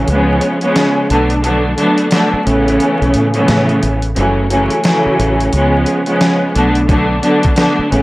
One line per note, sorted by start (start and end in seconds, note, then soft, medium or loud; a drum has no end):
0.08 0.39 C#2 loud
0.08 0.58 C#3 medium
0.08 0.58 F3 medium
0.08 0.58 G#3 medium
0.08 0.58 B3 medium
0.08 0.59 C#4 loud
0.08 closed hi-hat medium
0.41 closed hi-hat medium
0.61 1.09 C#3 loud
0.61 1.09 F3 medium
0.61 1.09 G#3 medium
0.61 1.09 B3 medium
0.61 1.09 C#4 loud
0.61 closed hi-hat soft
0.76 snare loud
0.76 closed hi-hat medium
1.10 1.74 B1 loud
1.10 1.33 D3 medium
1.10 1.33 F#3 medium
1.10 1.33 A3 medium
1.10 1.33 B3 medium
1.10 1.33 D4 loud
1.10 closed hi-hat medium
1.30 closed hi-hat soft
1.42 1.75 D3 medium
1.42 1.75 F#3 medium
1.42 1.75 A3 medium
1.42 1.75 B3 medium
1.42 1.75 D4 loud
1.42 closed hi-hat medium
1.76 2.09 D3 medium
1.76 2.09 F#3 medium
1.76 2.09 A3 medium
1.76 2.09 B3 medium
1.76 2.09 D4 loud
1.76 closed hi-hat medium
1.98 closed hi-hat medium
2.11 2.45 D3 loud
2.11 2.46 F#3 medium
2.11 2.43 A3 medium
2.11 2.44 B3 medium
2.11 2.46 D4 loud
2.11 snare loud
2.11 closed hi-hat medium
2.33 muted fingered electric bass stroke soft
2.44 2.77 A1 medium
2.44 3.26 C#3 loud
2.44 3.26 E3 medium
2.44 3.26 A3 medium
2.44 3.26 B3 medium
2.44 3.26 C#4 loud
2.44 closed hi-hat medium
2.68 closed hi-hat medium
2.80 closed hi-hat medium
3.02 3.13 B1 medium
3.02 closed hi-hat soft
3.14 3.46 A2 loud
3.14 closed hi-hat medium
3.34 3.96 C#3 loud
3.34 3.96 E3 medium
3.34 3.96 A3 medium
3.34 3.96 B3 medium
3.34 3.96 C#4 loud
3.34 closed hi-hat soft
3.48 3.80 A2 loud
3.48 snare loud
3.48 closed hi-hat medium
3.69 closed hi-hat soft
3.83 4.14 A1 medium
3.83 closed hi-hat medium
4.02 closed hi-hat medium
4.16 4.68 F#1 loud
4.16 4.48 C#3 medium
4.16 4.48 E3 medium
4.16 4.49 F#3 medium
4.16 4.48 A3 medium
4.16 4.49 C#4 loud
4.16 closed hi-hat medium
4.49 4.82 C#3 medium
4.49 4.82 E3 medium
4.49 4.82 F#3 medium
4.49 4.82 A3 medium
4.49 4.82 C#4 loud
4.49 closed hi-hat medium
4.70 closed hi-hat medium
4.84 5.52 C#3 medium
4.84 5.53 E3 medium
4.84 5.53 F#3 medium
4.84 5.53 A3 medium
4.84 5.53 C#4 loud
4.84 snare loud
4.84 closed hi-hat loud
5.06 muted fingered electric bass stroke soft
5.19 5.50 A1 medium
5.19 closed hi-hat medium
5.41 closed hi-hat medium
5.53 5.84 C#2 loud
5.53 6.04 C#3 medium
5.53 6.04 F3 medium
5.53 6.04 G#3 medium
5.53 6.04 B3 medium
5.53 6.04 C#4 loud
5.53 closed hi-hat medium
5.86 closed hi-hat medium
6.06 6.54 C#3 loud
6.06 6.54 F3 medium
6.06 6.54 G#3 medium
6.06 6.55 B3 medium
6.06 6.55 C#4 loud
6.06 closed hi-hat soft
6.21 snare loud
6.21 closed hi-hat medium
6.55 7.20 B1 medium
6.55 6.78 D3 loud
6.55 6.78 F#3 medium
6.55 6.78 A3 medium
6.55 6.79 B3 medium
6.55 6.79 D4 loud
6.55 closed hi-hat medium
6.75 closed hi-hat soft
6.87 7.20 D3 medium
6.87 7.20 F#3 medium
6.87 7.20 A3 medium
6.87 7.20 B3 medium
6.87 7.20 D4 loud
6.87 kick loud
6.87 closed hi-hat medium
7.21 7.54 D3 medium
7.21 7.54 F#3 medium
7.21 7.54 A3 medium
7.21 7.55 B3 medium
7.21 7.55 D4 loud
7.21 closed hi-hat medium
7.43 kick medium
7.43 closed hi-hat medium
7.56 7.91 D3 loud
7.56 7.91 F#3 medium
7.56 7.89 A3 medium
7.56 7.89 B3 medium
7.56 7.91 D4 loud
7.56 snare loud
7.56 closed hi-hat loud
7.79 muted fingered electric bass stroke soft
7.90 8.03 A1 loud
7.90 8.03 C#3 loud
7.90 8.03 E3 medium
7.90 8.03 A3 medium
7.90 8.03 B3 medium
7.90 8.03 C#4 loud
7.90 closed hi-hat medium